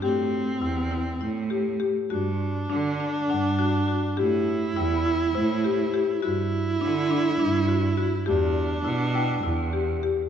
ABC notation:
X:1
M:7/8
L:1/16
Q:1/4=102
K:Ador
V:1 name="Celesta"
g8- g2 z4 | z8 f6- | f2 z2 g b3 c6- | c2 z12 |
z6 g8 |]
V:2 name="Marimba"
G4 E2 E2 E2 G2 G2 | F4 D2 D2 D2 F2 F2 | G4 E2 E2 E2 G2 G2 | F4 D2 D2 D2 F2 F2 |
G4 E2 E2 E2 G2 G2 |]
V:3 name="Viola"
C12 z2 | D12- D2 | E12- E2 | E12- E2 |
D12 z2 |]
V:4 name="Cello" clef=bass
A,,4 E,,4 A,,6 | G,,4 D,4 G,,6 | A,,4 E,,4 A,,6 | G,,4 D,4 G,,6 |
E,,4 B,,4 E,,6 |]